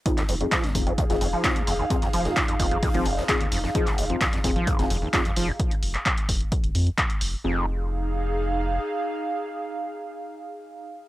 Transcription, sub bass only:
\new Staff \with { instrumentName = "Sub bass" } { \clef bass \time 4/4 \key f \minor \tempo 4 = 130 r8 f,,16 r8. f,,16 r8 f,,16 f,,16 r8. f,,16 r16 | r8 f,,16 r8. f,,16 r8 f,,16 f,,16 r8. f,,16 r16 | r8 f,,16 r8. f,,16 r8 f,,16 f,,16 r8. f,,16 r16 | r8 f,,16 r8. f,,16 r8 f,,16 f,16 r8. f,,16 r16 |
f,,2. r4 | r1 | }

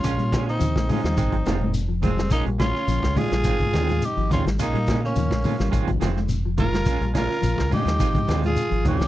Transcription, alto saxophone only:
\new Staff \with { instrumentName = "Alto saxophone" } { \time 4/4 \key bes \dorian \tempo 4 = 106 des'8. c'8. c'4. r8 aes8 | bes8 des'4 f'4. ees'8 des'8 | bes8. bes4. r4 r16 f'8~ | f'8 f'4 ees'4~ ees'16 f'8. des'8 | }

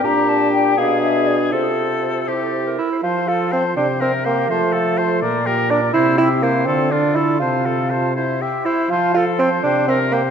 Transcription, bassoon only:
\new Staff \with { instrumentName = "Bassoon" } { \time 6/8 \key f \major \tempo 4. = 82 bes,4. b,4. | c4. c4 e'8 | f'8 f'8 c'8 d'8 c'8 bes8 | a2 r8 d'8 |
e'8 e'8 bes8 c'8 d'8 e'8 | f'4. r4 e'8 | f'8 f'8 c'8 d'8 c'8 bes8 | }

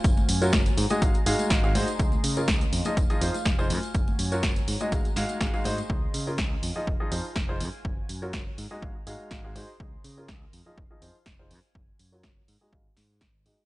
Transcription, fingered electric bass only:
\new Staff \with { instrumentName = "Fingered electric bass" } { \clef bass \time 4/4 \key aes \mixolydian \tempo 4 = 123 ges,,8 ges,8 ges,,8 aes,8 aes,,8 aes,8 aes,,8 aes,8 | des,8 des8 des,8 f,8 f,,8 f,8 f,,8 ges,8 | ges,,8 ges,8 ges,,8 aes,8 aes,,8 aes,8 aes,,8 aes,8 | des,8 des8 des,8 f,8 f,,8 f,8 f,,8 ges,8 |
ges,,8 ges,8 ges,,8 aes,8 aes,,8 aes,8 aes,,8 aes,8 | des,8 des8 des,8 f,8 f,,8 f,8 f,,8 ges,8 | ges,,8 ges,8 ges,,8 aes,8 aes,,8 aes,8 aes,,8 aes,8 | }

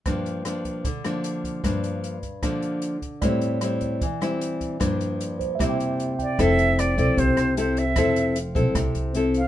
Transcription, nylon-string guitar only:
\new Staff \with { instrumentName = "Nylon-string guitar" } { \time 4/4 \key f \major \tempo 4 = 152 << { <f bes d'>4 <f bes d'>4 r8 <f bes d'>4. | <f bes d'>4. r8 <f bes d'>4. r8 | <g c' e'>4 <g c' e'>4 r8 <g c' e'>4. | <f bes d'>2 <g bes e'>4. r8 |
<c' e' a'>4. <c' e' a'>4. <c' e' a'>8 r8 | <c' e' a'>4 r8 <c' e' a'>4. <c' e' a'>8 r8 | } \\ { g,2 d2 | g,2 d2 | a,2 e2 | g,2 c2 |
f2 c2 | f2 c2 | } >> }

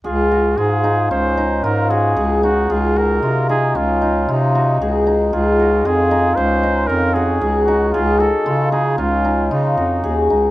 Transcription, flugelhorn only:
\new Staff \with { instrumentName = "Flugelhorn" } { \time 5/4 \key des \major \tempo 4 = 114 f'4 aes'4 c''4 bes'8 aes'4 ges'8 | f'8 bes'4 aes'8 f'4 ees'4. r8 | f'4 aes'4 c''4 bes'8 aes'4 ges'8 | f'8 a'4 aes'8 f'4 ees'4. r8 | }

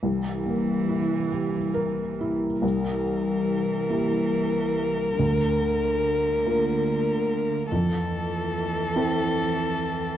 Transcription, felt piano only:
\new Staff \with { instrumentName = "Felt piano" } { \time 6/8 \key c \mixolydian \tempo 4. = 47 c,8 bes8 e'8 g'8 bes'8 e'8 | c,4. <bes e' g'>4. | d,4. <bes f' bes'>4. | f,4. <c' e' a'>4. | }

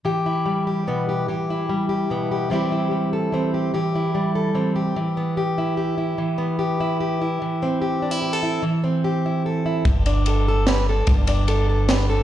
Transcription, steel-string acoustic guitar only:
\new Staff \with { instrumentName = "Steel-string acoustic guitar" } { \time 3/4 \key e \minor \tempo 4 = 147 << { g'8 e'4 g'8 b8 g'8 | g'8 e'4 g'8 b8 g'8 | <g c' e' g'>8 e'4 a'8 c'8 g'8 | g'8 e'4 a'8 c'8 g'8~ |
g'8 b8 g'8 e'8 g'8 e'8 | r8 b8 g'8 e'8 g'8 e'8 | r8 c'8 g'8 d'16 e'16 g'16 a'16 e'8 | r8 c'8 g'8 e'8 a'8 e'8 |
r8 d'8 a'8 a'8 b'8 a'8 | r8 d'8 a'8 a'8 b'8 a'8 | } \\ { e4 g4 b,4 | e4 g4 b,4 | e4 g4 e4 | e4 g4 e4 |
e2. | e2. | e2. | e2. |
r2. | g,2. | } >> }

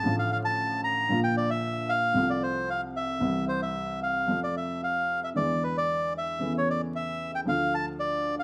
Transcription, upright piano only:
\new Staff \with { instrumentName = "Upright piano" } { \clef bass \time 4/4 \key f \major \tempo 4 = 114 <a,, a, d f a f'>2 <bes,, bes, d f bes f'>2 | <c, c f a f'>2 <c, c e g e'>2 | <f, c f a f'>2 <e, d e gis b e'>2 | <e, cis e a e'>2 <d, d f a f'>2 | }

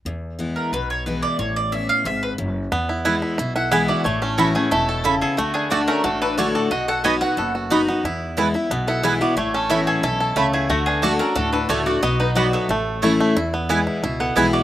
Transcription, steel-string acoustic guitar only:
\new Staff \with { instrumentName = "Steel-string acoustic guitar" } { \time 4/4 \key e \mixolydian \tempo 4 = 180 << { r4 <e gis b e'>4 r4 <e gis b e'>4 | r4 <e b cis' e'>4 r2 | r4 <e gis b e'>4 r4 <e gis b e'>4 | r4 <e b cis' e'>8 <cis' e'>8 r2 |
r4 <d a d' fis'>4 r4 <d a d' fis'>4 | r4 <fis b dis' fis'>8 <dis' fis'>8 r4 <fis b dis' fis'>8 <dis' fis'>8 | r4 <e gis b e'>8 <b e'>8 r4 <e gis b e'>8 <b e'>8 | r4 <e b cis' e'>4 r2 |
r4 <d a d' fis'>8 <d' fis'>8 r4 <d a d' fis'>8 <d' fis'>8 | r4 <fis b dis' fis'>4 r4 <e a cis' e'>4 | r4 <e gis b e'>4 r4 <e gis b e'>4 | } \\ { e,2 b,2 | a,2 gis,4 fis,4 | e,2 b,2 | a,2 b,4 cis4 |
d2 a,2 | b,2 fis,2 | e,2 b,2 | a,2 b,4 cis4 |
d2 a,2 | b,2 a,2 | e,2 b,2 | } >> }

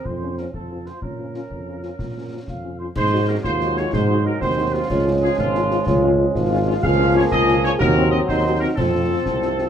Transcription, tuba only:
\new Staff \with { instrumentName = "Tuba" } { \clef bass \time 6/8 \key bes \minor \tempo 4. = 124 f,4. f,4. | bes,4. f,4. | bes,4. f,4. | \key aes \major aes,4. ees,4. |
aes,4. ees,4. | des,4. aes,,4. | des,4. aes,,4. | \key bes \minor des,4. des,4. |
ees,4. ees,4. | f,4. c,4. | }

